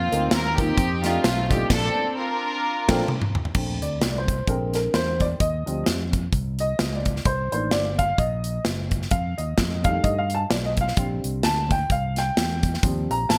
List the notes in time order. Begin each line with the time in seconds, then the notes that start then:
Already playing: A#3 C4 F4
0.12 D2 A#3 C4 D#4 F4 A#4, closed hi-hat
0.31 D#2 A#4, snare, closed hi-hat
0.58 A#3 C4 D#4 F4 G4 A#4, kick, closed hi-hat
0.77 F2, kick, closed hi-hat
1.04 A3 C4 D4 D#4 F4 G4, snare, closed hi-hat
1.24 B1, snare, closed hi-hat
1.49 A3 D4 D#4 F4 G4, kick, closed hi-hat
1.70 A#1 C4 D4 A4, kick, snare, crash
2.17 D4 F4 A#4
2.88 A#1 A#3 C4 D4 F4 A4, kick, snare, crash
3.08 mid tom
3.22 mid tom
3.35 floor tom
3.45 floor tom
3.54 A#1 D3 A3 C4, kick, crash
3.82 D2 D5, closed hi-hat
4.01 C2, snare, closed hi-hat
4.11 D5
4.18 C5
4.28 kick, closed hi-hat
4.47 A#1 D3 G#3 C4 A#4, kick, closed hi-hat
4.74 A#4, snare, closed hi-hat
4.94 E2 C5, snare, closed hi-hat
5.20 D5, kick, closed hi-hat
5.40 D#2 D#5, kick, closed hi-hat
5.66 D2 F3 G3 C4, closed hi-hat
5.86 F2, snare, closed hi-hat
6.13 kick, closed hi-hat
6.32 C2, kick, closed hi-hat
6.59 D#5, closed hi-hat
6.79 C#2, snare, closed hi-hat
6.96 D5
7.05 kick, closed hi-hat
7.16 snare
7.25 C2 C5, kick, closed hi-hat
7.51 A1 D#3 A#3 D4 C5, closed hi-hat
7.71 G1 D5, snare, closed hi-hat
7.99 F5, kick, closed hi-hat
8.18 A#1 D#5, kick, closed hi-hat
8.44 closed hi-hat
8.65 F#1, snare, closed hi-hat
8.91 kick, closed hi-hat
9.02 snare
9.11 F2 F5, kick, closed hi-hat
9.38 D#2 D#5, closed hi-hat
9.58 F2, kick, snare, closed hi-hat
9.84 D#3 G3 A3 F5, kick, closed hi-hat
10.04 G2 D#5, kick, closed hi-hat
10.18 F5
10.30 closed hi-hat
10.34 A5
10.50 B1 D5, snare, closed hi-hat
10.66 D#5
10.77 kick, closed hi-hat
10.81 F5
10.88 snare
10.96 A#1 D3 G3 C4, kick, closed hi-hat
11.24 C2, closed hi-hat
11.43 D2 A5, snare, closed hi-hat
11.71 G5, kick, closed hi-hat
11.90 C2 F5, kick, closed hi-hat
12.16 G5, snare, closed hi-hat
12.37 E2, snare, closed hi-hat
12.63 kick, closed hi-hat
12.74 snare
12.83 D#2 F3 G3 C4, kick, closed hi-hat
13.10 A#1 A#5, closed hi-hat
13.29 A1 A5, snare, closed hi-hat